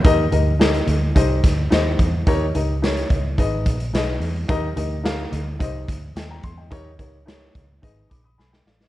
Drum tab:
HH |x-x-xxx-x-x-x-x-|x-x-xxx-x-xxx-o-|x-x-x-x-x-x-x-x-|x-x-x-x-x-x-----|
SD |----o-----o-o---|----o-------o---|----o-------o---|----o-------oooo|
BD |o-------o-o---o-|o-----o-o-o-----|o-------o-o---o-|o-o---o-o-o-----|